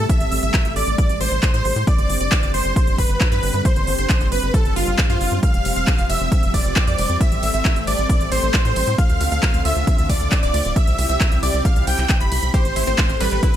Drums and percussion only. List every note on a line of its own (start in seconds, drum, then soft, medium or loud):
0.09 kick loud
0.09 closed hi-hat medium
0.20 closed hi-hat medium
0.32 open hi-hat loud
0.43 closed hi-hat medium
0.54 kick loud
0.54 clap loud
0.54 closed hi-hat medium
0.65 closed hi-hat medium
0.76 open hi-hat loud
0.87 closed hi-hat medium
0.98 kick loud
0.98 closed hi-hat medium
1.09 closed hi-hat medium
1.21 open hi-hat loud
1.32 closed hi-hat medium
1.43 kick loud
1.43 clap loud
1.43 closed hi-hat medium
1.54 closed hi-hat medium
1.65 open hi-hat loud
1.76 closed hi-hat medium
1.87 kick loud
1.87 closed hi-hat medium
1.98 closed hi-hat medium
2.10 open hi-hat loud
2.21 closed hi-hat medium
2.32 kick loud
2.32 clap loud
2.32 closed hi-hat medium
2.43 closed hi-hat medium
2.54 open hi-hat loud
2.65 closed hi-hat medium
2.76 kick loud
2.76 closed hi-hat medium
2.87 closed hi-hat medium
2.98 kick medium
2.98 open hi-hat loud
3.10 closed hi-hat medium
3.21 kick loud
3.21 clap loud
3.21 closed hi-hat medium
3.32 closed hi-hat medium
3.43 open hi-hat loud
3.54 closed hi-hat medium
3.65 kick loud
3.65 closed hi-hat medium
3.76 closed hi-hat soft
3.87 open hi-hat loud
3.98 closed hi-hat soft
4.10 kick loud
4.10 clap loud
4.10 closed hi-hat medium
4.21 closed hi-hat medium
4.32 open hi-hat loud
4.43 closed hi-hat soft
4.54 kick loud
4.54 closed hi-hat medium
4.65 closed hi-hat medium
4.76 open hi-hat loud
4.87 closed hi-hat medium
4.98 kick loud
4.98 clap loud
4.98 closed hi-hat medium
5.10 closed hi-hat soft
5.21 open hi-hat loud
5.32 closed hi-hat medium
5.43 kick loud
5.43 closed hi-hat medium
5.54 closed hi-hat medium
5.65 open hi-hat loud
5.65 ride medium
5.76 closed hi-hat soft
5.87 kick loud
5.87 clap loud
5.87 closed hi-hat medium
5.98 closed hi-hat medium
6.10 open hi-hat loud
6.10 ride medium
6.21 closed hi-hat medium
6.32 kick loud
6.32 closed hi-hat medium
6.43 closed hi-hat medium
6.54 kick medium
6.54 open hi-hat loud
6.54 ride medium
6.65 closed hi-hat medium
6.76 kick loud
6.76 clap loud
6.76 closed hi-hat medium
6.87 closed hi-hat medium
6.98 open hi-hat medium
6.98 ride medium
7.10 closed hi-hat soft
7.21 kick loud
7.21 closed hi-hat medium
7.32 closed hi-hat medium
7.43 open hi-hat loud
7.43 ride medium
7.54 closed hi-hat medium
7.65 kick loud
7.65 clap loud
7.65 closed hi-hat medium
7.76 closed hi-hat medium
7.87 open hi-hat loud
7.87 ride medium
7.98 closed hi-hat medium
8.09 kick loud
8.09 closed hi-hat medium
8.21 closed hi-hat medium
8.32 open hi-hat loud
8.32 ride medium
8.43 closed hi-hat medium
8.54 kick loud
8.54 clap loud
8.54 closed hi-hat medium
8.65 closed hi-hat medium
8.76 open hi-hat medium
8.76 ride medium
8.87 closed hi-hat medium
8.98 kick loud
8.98 closed hi-hat medium
9.09 closed hi-hat medium
9.21 open hi-hat loud
9.21 ride medium
9.32 closed hi-hat medium
9.43 kick loud
9.43 clap loud
9.43 closed hi-hat medium
9.54 closed hi-hat medium
9.65 open hi-hat medium
9.65 ride medium
9.76 closed hi-hat medium
9.87 kick loud
9.87 closed hi-hat medium
9.98 closed hi-hat medium
10.09 kick medium
10.09 open hi-hat loud
10.09 ride medium
10.21 closed hi-hat medium
10.32 kick loud
10.32 clap loud
10.32 closed hi-hat medium
10.43 closed hi-hat medium
10.54 open hi-hat medium
10.54 ride medium
10.65 closed hi-hat medium
10.76 kick loud
10.76 closed hi-hat medium
10.87 closed hi-hat medium
10.98 open hi-hat loud
10.98 ride medium
11.10 closed hi-hat medium
11.21 kick loud
11.21 clap loud
11.21 closed hi-hat medium
11.32 closed hi-hat medium
11.43 open hi-hat medium
11.43 ride medium
11.54 closed hi-hat medium
11.65 kick loud
11.65 closed hi-hat medium
11.76 closed hi-hat medium
11.87 open hi-hat loud
11.87 ride medium
11.98 clap soft
11.98 closed hi-hat medium
12.09 kick loud
12.09 clap loud
12.09 closed hi-hat medium
12.21 closed hi-hat medium
12.32 open hi-hat medium
12.32 ride medium
12.43 closed hi-hat medium
12.54 kick loud
12.54 closed hi-hat medium
12.65 closed hi-hat medium
12.76 open hi-hat loud
12.76 ride medium
12.87 closed hi-hat medium
12.98 kick loud
12.98 clap loud
12.98 closed hi-hat medium
13.09 closed hi-hat medium
13.20 open hi-hat loud
13.20 ride medium
13.32 closed hi-hat medium
13.43 kick loud
13.43 closed hi-hat medium